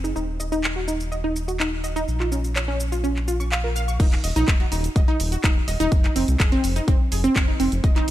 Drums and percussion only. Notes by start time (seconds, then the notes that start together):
0.04 shaker
0.16 shaker
0.40 shaker
0.52 shaker
0.64 clap, shaker
0.88 shaker
1.00 shaker
1.12 shaker
1.36 shaker
1.48 shaker
1.60 clap, shaker
1.84 shaker
1.96 shaker
2.08 shaker
2.20 clap
2.32 shaker
2.44 shaker
2.56 clap, shaker
2.80 shaker
2.92 shaker
3.04 shaker
3.16 clap
3.28 shaker
3.40 shaker
3.52 clap, shaker
3.76 shaker
3.88 shaker
4.00 kick, closed hi-hat, crash, shaker
4.12 clap, closed hi-hat
4.24 open hi-hat, shaker
4.36 closed hi-hat, shaker
4.48 kick, clap, closed hi-hat, shaker
4.60 closed hi-hat
4.72 open hi-hat, shaker
4.84 closed hi-hat, shaker
4.96 kick, closed hi-hat, shaker
5.20 open hi-hat, shaker
5.32 closed hi-hat, shaker
5.44 kick, clap, closed hi-hat, shaker
5.68 open hi-hat, shaker
5.80 closed hi-hat, shaker
5.92 kick, closed hi-hat, shaker
6.04 clap, closed hi-hat
6.16 open hi-hat, shaker
6.28 closed hi-hat, shaker
6.40 kick, clap, closed hi-hat, shaker
6.52 closed hi-hat
6.64 open hi-hat, shaker
6.76 closed hi-hat, shaker
6.88 kick, closed hi-hat, shaker
7.12 open hi-hat, shaker
7.24 closed hi-hat, shaker
7.36 kick, clap, closed hi-hat, shaker
7.60 open hi-hat, shaker
7.72 closed hi-hat, shaker
7.84 kick, closed hi-hat, shaker
7.96 clap, closed hi-hat